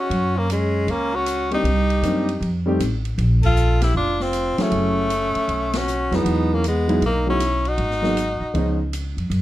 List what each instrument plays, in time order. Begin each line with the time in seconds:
Already playing: trumpet F#4
0.00 tenor saxophone C#4
0.10 upright bass F#2, ride
0.37 tenor saxophone A#3, trumpet C#4
0.50 tenor saxophone G#3, trumpet C#4, hi-hat pedal, ride
0.87 upright bass C#2, tenor saxophone A#3, trumpet C#4, ride
1.14 tenor saxophone C#4, trumpet F#4
1.26 hi-hat pedal, ride
1.51 grand piano G3 A#3 C4 D4 D#4, tenor saxophone D#4, trumpet G4, ride
1.63 upright bass C2, ride
1.90 ride
2.02 upright bass F#2, grand piano G3 A#3 C4 D4 D#4, hi-hat pedal, ride
2.29 ride
2.41 upright bass F2, ride
2.66 grand piano G3 A3 C4 D#4 G4
2.79 upright bass A1, hi-hat pedal, ride
3.05 ride
3.18 upright bass A#1, ride
3.43 tenor saxophone F4, trumpet A4, kick, crash
3.56 hi-hat pedal
3.81 tenor saxophone E4, trumpet G4, snare, ride
3.94 upright bass F1, tenor saxophone D4, trumpet F4
4.20 tenor saxophone C4, trumpet F4, snare
4.33 hi-hat pedal, ride
4.58 grand piano F#3 A3 C#4 E4 G#4, tenor saxophone A3, trumpet C#4, muted upright bass stroke, snare, ride
4.71 upright bass F#1, ride
5.10 hi-hat pedal, ride
5.35 muted upright bass stroke, ride
5.48 upright bass B1, ride
5.73 tenor saxophone C#4, trumpet F#4, snare, ride
5.88 hi-hat pedal
6.11 upright bass F2, grand piano E3 F#3 G#3 B3 D#4, tenor saxophone B3, trumpet D#4, snare, ride
6.25 upright bass E2, ride
6.54 tenor saxophone A#3, trumpet C#4
6.64 tenor saxophone G#3, trumpet B3, hi-hat pedal, ride
6.88 grand piano F#3 G#3 B3 D#4 E4, ride
7.01 upright bass B1, ride
7.06 tenor saxophone A#3, trumpet D#4
7.26 grand piano F#3 G#3 B3 D#4 F#4, tenor saxophone C#4, trumpet E4
7.40 hi-hat pedal, ride
7.65 tenor saxophone D#4, trumpet F#4, ride
7.78 upright bass G#1, ride
7.91 snare
8.02 grand piano F#3 G#3 A#3 B3 D#4, snare
8.17 hi-hat pedal, ride
8.40 muted upright bass stroke
8.54 upright bass C#2, grand piano F3 G#3 B3 C#4 D#4, ride
8.93 hi-hat pedal, ride
9.17 upright bass F2, ride
9.30 upright bass F#2, ride